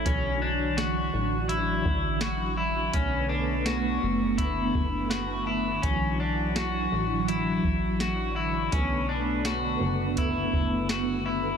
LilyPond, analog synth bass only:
\new Staff \with { instrumentName = "Analog synth bass" } { \clef bass \time 4/4 \key d \major \tempo 4 = 83 b,,4. a,,4 a,,4. | b,,4. fis,,4 fis,,4. | b,,4. a,,4 a,,4. | b,,4. fis,,4 fis,,4. | }